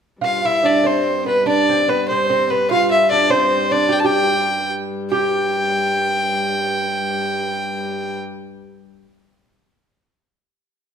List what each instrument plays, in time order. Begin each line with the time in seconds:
0.21 hurdy-gurdy G2, lute F4, fiddle F5
0.45 lute E4, fiddle E5
0.63 lute D4, fiddle D5
0.84 lute C4, fiddle C5
1.26 lute B3, fiddle B4
1.46 lute D4, fiddle D5
1.69 lute C4
1.88 lute B3, fiddle B4
2.08 lute C4, fiddle C5
2.30 lute C4
2.50 lute B3, fiddle B4
2.70 lute F4, fiddle F5
2.91 fiddle E5
3.11 lute D4, fiddle D5
3.30 lute C4, fiddle C5
3.71 lute D4, fiddle D5
3.89 lute G4, fiddle G5
3.99 fiddle A5
4.04 lute G4, fiddle G5
5.11 hurdy-gurdy G2, lute G4, fiddle G5